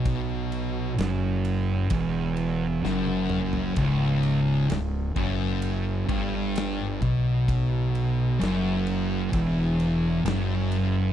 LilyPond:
<<
  \new Staff \with { instrumentName = "Distorted electric guitar" } { \clef bass \time 4/4 \key cis \minor \tempo 4 = 65 b,4 fis,4 e,4 fis,4 | cis,4 cis,8 fis,4 g,4 b,8~ | b,4 fis,4 e,4 fis,4 | }
  \new Staff \with { instrumentName = "Distorted electric guitar" } { \clef bass \time 4/4 \key cis \minor b,4 fis,4 e,4 fis,4 | cis,4 cis,8 fis,4 g,4 b,8~ | b,4 fis,4 e,4 fis,4 | }
  \new Staff \with { instrumentName = "Fingered electric bass" } { \clef bass \time 4/4 \key cis \minor b,,4 fis,,4 e,,4 fis,,4 | cis,,4 cis,,8 fis,,4 g,,4 b,,8~ | b,,4 fis,,4 e,,4 fis,,4 | }
  \new DrumStaff \with { instrumentName = "Drums" } \drummode { \time 4/4 <bd cymr>8 cymr8 <cymr sn>8 cymr8 <bd cymr>8 cymr8 sn16 tommh16 toml16 tomfh16 | <bd cymr>8 cymr8 <cymr sn>8 <bd cymr>8 cymr8 <bd cymr>8 <cymr sn>8 <bd cymr>8 | <bd cymr>8 cymr8 <cymr sn>8 cymr8 <bd cymr>8 cymr8 <cymr sn>8 cymr8 | }
>>